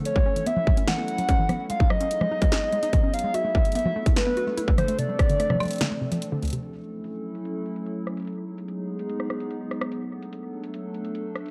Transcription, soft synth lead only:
X:1
M:4/4
L:1/8
Q:1/4=146
K:Bmix
V:1 name="Soft synth lead"
c2 e2 f4 | ^e d6 e | e2 e2 B3 =c | =d6- d z |
z8 | z8 | z8 |]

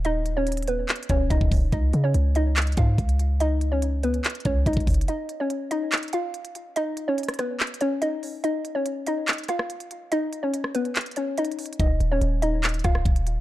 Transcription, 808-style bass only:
X:1
M:4/4
L:1/16
Q:1/4=143
K:Dbmix
V:1 name="808-style bass" clef=bass
E,,,8 z2 E,,,2 E,,, E,,, E,,,2 | D,,2 D,2 D,,6 A,,2 D,,4- | D,,8 z2 D,,2 D,, D,, G,,,2 | z16 |
z16 | z16 | z16 | E,,,2 E,,,2 E,,,6 D,,,2 E,,,4 |]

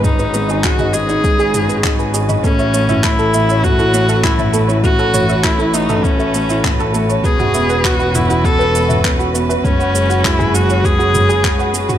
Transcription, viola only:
X:1
M:4/4
L:1/16
Q:1/4=100
K:Alyd
V:1 name="Viola"
D4 F2 G8 z2 | C4 E4 F4 E3 z | F4 E2 D2 C6 z2 | G4 F2 E2 A4 z4 |
C4 E2 F2 G6 z2 |]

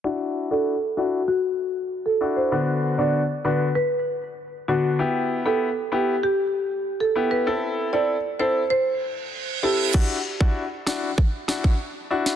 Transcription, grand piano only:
X:1
M:4/4
L:1/16
Q:1/4=97
K:Dmix
V:1 name="Grand piano"
[DEF]3 [DEF] z2 [DEF] z6 z [DEF]2 | [D,B,DF]3 [D,B,DF] z2 [D,B,DF] z6 z [D,B,DF]2 | [B,EG]3 [B,EG] z2 [B,EG] z6 z [B,EG]2 | [CEA]3 [CEA] z2 [CEA] z6 z [CEA]2 |
[DEF] z2 [DEF] z2 [DEF] z3 [DEF] z3 [DEF] z |]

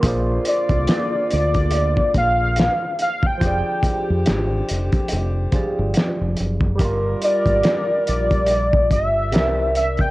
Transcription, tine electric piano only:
X:1
M:4/4
L:1/8
Q:"Swing 16ths" 1/4=71
K:Bbmix
V:1 name="Tine electric piano"
[B,FAcd]8 | [F,FGAd]4- [F,FGAd] [F,FGAd]3 | [G,FGBd]6 [C,CBde=e]2 |]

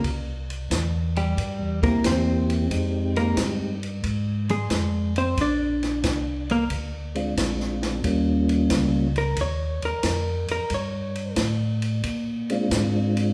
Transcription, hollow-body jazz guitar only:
X:1
M:4/4
L:1/8
Q:"Swing" 1/4=90
K:Bbdor
V:1 name="Hollow-body jazz guitar"
z3 [G,G]2 [B,B] [Cc]2- | [Cc] [B,B] z3 [A,A]2 [Cc] | [=D=d]3 [B,B] z4 | z3 B d B2 B |
d2 z6 |]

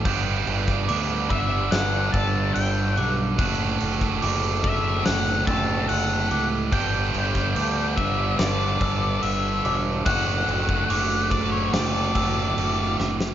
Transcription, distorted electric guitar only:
X:1
M:4/4
L:1/8
Q:1/4=72
K:D
V:1 name="Distorted electric guitar" clef=bass
[G,,D,G,B,DG]8 | [D,,A,,D,A,F]8 | [G,,D,G,B,DG]8 | [D,,A,,D,A,F]8 |]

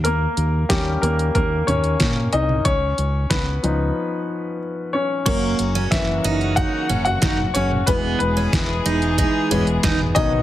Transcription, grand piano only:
X:1
M:4/4
L:1/16
Q:1/4=92
K:C#dor
V:1 name="Grand piano"
[A,A]4 =G2 [A,A]2 [A,A]2 [Cc]4 [Dd]2 | [Cc]4 [B,B]8 z2 [Cc]2 | [K:F#mix] c4 [E,e]4 [Ff]3 [Ff]3 [Cc]2 | B2 [B,B]12 [Dd]2 |]
V:2 name="Grand piano"
z4 [=G,A,C]12 | z6 [^E,B,D]8- [E,B,D]2 | [K:F#mix] [F,A,C]2 z12 z2 | [E,G,B,]6 z4 [E,G,B,]2 z2 [D,F,B,]2 |]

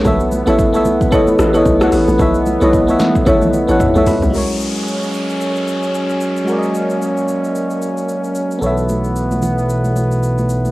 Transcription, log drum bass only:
X:1
M:4/4
L:1/16
Q:"Swing 16ths" 1/4=112
K:G#phr
V:1 name="Log drum bass" clef=bass
B,,,3 A,,,3 B,,,4 A,,,2 B,,,2 A,,, A,,, | B,,,3 B,,,3 z2 A,,, B,,,2 A,,, z B,,, C,, B,,, | z16 | z16 |
z16 |]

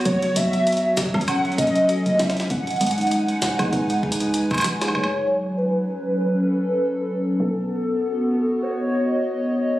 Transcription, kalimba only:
X:1
M:4/4
L:1/16
Q:"Swing 16ths" 1/4=98
K:F#dor
V:1 name="Kalimba" clef=bass
F, F z F, z2 C, F, C F, z F, F z F, z | z D, G, D G, z G, G z G, G G, z3 G | z16 | z16 |]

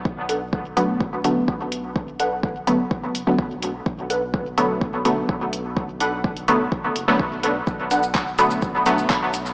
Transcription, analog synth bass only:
X:1
M:4/4
L:1/8
Q:1/4=126
K:Bm
V:1 name="Analog synth bass" clef=bass
B,,,6 B,,,2- | B,,,4 B,,, F,,, B,,,2 | B,,,6 B,,,2- | B,,,4 B,,, F,,, B,,,2 |
B,,,6 B,,,2 |]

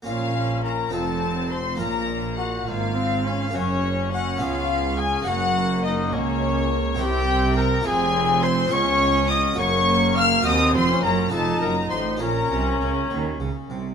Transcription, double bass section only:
X:1
M:6/8
L:1/8
Q:3/8=69
K:Bbm
V:1 name="Double bass section" clef=bass
B,,,3 F,,,3 | B,,,3 A,,,3 | G,,,3 D,,3 | G,,,3 D,,3 |
C,,3 F,,,3 | D,,3 G,,,3 | E,, F,,, G,,, F,,, G,,, =A,,, | B,,, C,, D,, E,, D,, C,, |]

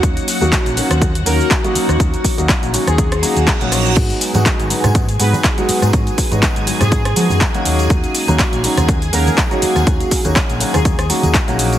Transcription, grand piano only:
X:1
M:4/4
L:1/16
Q:"Swing 16ths" 1/4=122
K:D#phr
V:1 name="Grand piano"
F,3 [F,A,CDF]3 [F,A,CDF]2 [F,A,CDF] z [F,A,CDF]3 [F,A,CDF]3 | [F,A,]3 [F,A,CDF]3 [F,A,CDF]2 [F,A,CDF] z [F,A,CDF]3 [F,A,CDF]3 | [G,B,D]3 [F,G,B,DF]3 [F,G,B,DF]2 [F,G,B,DF] z [F,G,B,DF]3 [F,G,B,DF]3 | [F,F]3 [F,G,B,DF]3 [F,G,B,DF]2 [F,G,B,DF] z [F,G,B,DF]3 [F,A,CDF]3 |
[F,A,]3 [F,A,CDF]3 [F,A,CDF]2 [F,A,CDF] z [F,A,CDF]3 [F,A,CDF]3 | [F,A,CD]3 [F,A,CDF]3 [F,A,CDF]2 A, z [F,A,CDF]3 [F,A,CDF]3 |]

